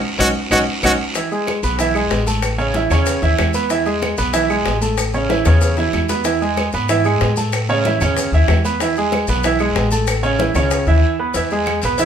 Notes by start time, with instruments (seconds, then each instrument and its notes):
0.19 upright bass B1, grand piano C#4 D#4 F#4, trumpet F#4, cowbell, high conga, long guiro, claves, maracas
0.51 upright bass B1, grand piano C#4 D#4 F#4, trumpet F#4, cowbell, high conga, long guiro, claves, maracas
0.83 upright bass B1, grand piano C#4 D#4 F#4, trumpet F#4, cowbell, high conga, long guiro, claves, maracas
1.15 grand piano E3 E4 E5, high bongo, high conga, long guiro, maracas
1.31 grand piano G#3 G#4 G#5, high conga, maracas
1.47 high bongo, high conga, short guiro, claves, maracas
1.63 upright bass B1, grand piano B3 B4 B5, high conga, short guiro, maracas
1.79 grand piano E3 E4 E5, high bongo, high conga, long guiro, maracas
1.95 grand piano G#3 G#4 G#5, high conga, claves, maracas
2.11 upright bass A1, high bongo, low bongo, high conga, short guiro, maracas
2.26 grand piano A3 A4 A5, high conga, short guiro, maracas
2.42 high bongo, long guiro, claves, maracas
2.58 grand piano C#3 C#4 C#5, high bongo, high conga, maracas
2.74 grand piano E3 E4 E5, high bongo, high conga, short guiro, maracas
2.90 upright bass E2, grand piano C#3 C#4 C#5, high bongo, high conga, low conga, short guiro, claves, maracas
3.06 high bongo, high conga, long guiro, maracas
3.22 upright bass D#2, grand piano E3 E4 E5, high bongo, high conga, maracas
3.38 upright bass E2, high bongo, low bongo, high conga, short guiro, claves, maracas
3.54 grand piano B3 B4 B5, high conga, short guiro, maracas
3.70 grand piano E3 E4 E5, high bongo, high conga, long guiro, maracas
3.86 grand piano G#3 G#4 G#5, high conga, maracas
4.02 high bongo, high conga, short guiro, claves, maracas
4.17 upright bass B1, grand piano B3 B4 B5, high conga, short guiro, maracas
4.33 grand piano E3 E4 E5, high bongo, high conga, long guiro, maracas
4.50 grand piano G#3 G#4 G#5, high conga, claves, maracas
4.66 upright bass A1, high bongo, low bongo, high conga, short guiro, maracas
4.81 grand piano A3 A4 A5, high conga, short guiro, maracas
4.98 high bongo, long guiro, claves, maracas
5.14 grand piano C#3 C#4 C#5, high bongo, high conga, maracas
5.29 grand piano E3 E4 E5, high bongo, high conga, short guiro, maracas
5.45 upright bass E2, grand piano C#3 C#4 C#5, high bongo, high conga, low conga, short guiro, claves, maracas
5.61 high bongo, high conga, long guiro, maracas
5.77 grand piano E3 E4 E5, low bongo, high conga, maracas
5.93 upright bass E2, low bongo, high conga, short guiro, claves, maracas
6.09 grand piano B3 B4 B5, low bongo, high conga, short guiro, maracas
6.24 grand piano E3 E4 E5, high bongo, high conga, long guiro, maracas
6.41 grand piano G#3 G#4 G#5, high conga, maracas
6.57 high bongo, high conga, short guiro, claves, maracas
6.72 upright bass G#2, grand piano B3 B4 B5, high conga, short guiro, maracas
6.89 grand piano E3 E4 E5, high bongo, high conga, maracas
7.04 grand piano G#3 G#4 G#5, high conga, claves, maracas
7.21 upright bass A2, high bongo, low bongo, high conga, short guiro, maracas
7.36 grand piano A3 A4 A5, high conga, short guiro, maracas
7.52 high bongo, high conga, long guiro, claves, maracas
7.68 grand piano C#3 C#4 C#5, high bongo, high conga, maracas
7.85 grand piano E3 E4 E5, high bongo, high conga, short guiro, maracas
8.01 upright bass E2, grand piano C#3 C#4 C#5, high bongo, high conga, low conga, short guiro, claves, maracas
8.17 high bongo, high conga, low conga, long guiro, maracas
8.32 upright bass D#2, grand piano E3 E4 E5, high bongo, high conga
8.48 upright bass E2, high bongo, low bongo, high conga, short guiro, claves, maracas
8.65 grand piano B3 B4 B5, high conga, short guiro, maracas
8.80 grand piano E3 E4 E5, high bongo, long guiro, maracas
8.96 grand piano G#3 G#4 G#5, high conga, maracas
9.12 high bongo, high conga, short guiro, claves, maracas
9.27 upright bass B1, grand piano B3 B4 B5, high conga, short guiro, maracas
9.43 grand piano E3 E4 E5, high bongo, long guiro, maracas
9.59 grand piano G#3 G#4 G#5, high conga, claves, maracas
9.75 upright bass A1, high bongo, low bongo, high conga, short guiro, maracas
9.91 grand piano A3 A4 A5, high conga, short guiro, maracas
10.07 high bongo, high conga, long guiro, claves, maracas
10.23 grand piano C#3 C#4 C#5, high bongo, high conga, maracas
10.38 grand piano E3 E4 E5, high bongo, high conga, short guiro, maracas
10.55 upright bass C#2, grand piano C#3 C#4 C#5, high bongo, high conga, low conga, short guiro, claves, maracas
10.71 high bongo, high conga, long guiro, maracas
10.86 upright bass D#2, grand piano E3 E4 E5, high bongo, high conga, maracas
11.19 grand piano B3 B4 B5
11.34 upright bass E2, grand piano E3 E4 E5, cowbell, high conga, long guiro, maracas
11.51 grand piano G#3 G#4 G#5, high conga, maracas
11.66 cowbell, high conga, short guiro, claves, maracas
11.82 upright bass B1, grand piano B3 B4 B5, cowbell, high conga, short guiro, maracas
11.98 grand piano E3 E4 E5, cowbell, high conga, long guiro, maracas